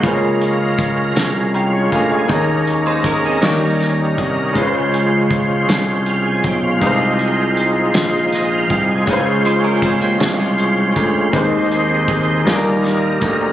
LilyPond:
<<
  \new Staff \with { instrumentName = "Tonewheel organ" } { \time 6/8 \key des \lydian \tempo 4. = 53 << { r2 f''16 des''16 bes'16 aes'16~ | aes'16 r2 r8. | r2 f''16 aes''16 g''16 f''16~ | f''16 r4. r16 ees''16 f''8 aes''16~ |
aes''16 r2 r8. | r2. | } \\ { <aes des' f' bes'>2. | <aes des' ees' aes' bes'>4. <g des' ees' bes'>4. | <aes des' fes' f' c''>2. | <aes ees' f' bes' c''>2. |
<aes des' ees' f' c''>2. | <aes c' ees' c''>4. <g bes ees' aes' bes'>4. | } >> }
  \new Staff \with { instrumentName = "Clean electric guitar" } { \time 6/8 \key des \lydian r2. | r8. <ees' c''>16 <des' bes'>16 <c' aes'>16 <bes g'>16 <g ees'>4~ <g ees'>16 | r2. | r2. |
r8 <ees' c''>16 <des' bes'>16 <c' aes'>16 <bes g'>8 <aes f'>4~ <aes f'>16 | r2. | }
  \new Staff \with { instrumentName = "Grand piano" } { \time 6/8 \key des \lydian << { r2 <g'' bes''>8 <f'' aes''>16 <des'' f''>16~ | <des'' f''>16 r2 r8. | r2. | r2. |
r2. | r2. | } \\ { <bes f' aes' c'' des''>2. | <bes ees' aes' des''>4. <bes ees' g' des''>4. | <aes des' f' ces'' c''>2. | <aes ees' f' c''>2. |
<aes des' ees' f' c''>2. | <aes c' ees' c''>4. <g bes ees' aes' bes'>4. | } >> }
  \new Staff \with { instrumentName = "Grand piano" } { \clef bass \time 6/8 \key des \lydian des4. r4. | ees4. ees4. | des4. r4. | c4. r4. |
des4. r4. | ees4. bes,4. | }
  \new Staff \with { instrumentName = "Slap bass" } { \clef bass \time 6/8 \key des \lydian des,4. c,4 d,8 | ees,4. ees,4 c,8 | des,4. c,4 ces,8 | c,4. bes,,4 c,8 |
des,4. c,4 d,8 | ees,4. ees,4 d,8 | }
  \new DrumStaff \with { instrumentName = "Drums" } \drummode { \time 6/8 <hh bd>8 hh8 <hh bd>8 <hh sn>8 hh8 <hh bd>8 | <hh bd>8 hh8 <hh bd>8 <hh sn>8 <hh sn>8 <hh bd>8 | <hh bd>8 hh8 <hh bd>8 <hh sn>8 hh8 <hh bd>8 | <hh bd>8 hh8 hh8 <hh sn>8 <hh sn>8 <hh bd>8 |
<hh bd>8 hh8 <hh bd>8 <hh sn>8 hh8 <hh bd>8 | <hh bd>8 hh8 <hh bd>8 <hh sn>8 <hh sn>8 <hh bd>8 | }
>>